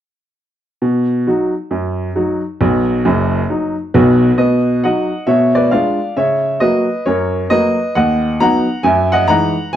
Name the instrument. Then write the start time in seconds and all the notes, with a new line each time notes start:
grand piano
0.82 B2
1.27 F#3 D#4 F#4
1.71 F#2
2.16 F#3 D#4 F#4
2.61 B1 B2
3.05 F#1 F#2
3.49 F#3 D#4 F#4
3.94 B1 B2 F#4 B4
4.38 B2 B4 D#5
4.84 F#3 D#4 F#4 D#5 F#5
5.27 B2 C#5 E5
5.55 B4 D5
5.71 G#3 D4 F4 D5 F5
6.17 C#3 C#5 E5
6.60 F#3 A#3 F#4 B4 D#5
7.06 F#2 A#4 C#5
7.50 F#3 A#3 F#4 B4 D#5
7.95 D#2 D#5 F#5
8.40 F#3 B3 D#4 F#5 A#5
8.83 F#2 E5 G#5
9.12 D#5 F#5
9.28 E3 G#3 D#4 F#5 A#5
9.73 G#5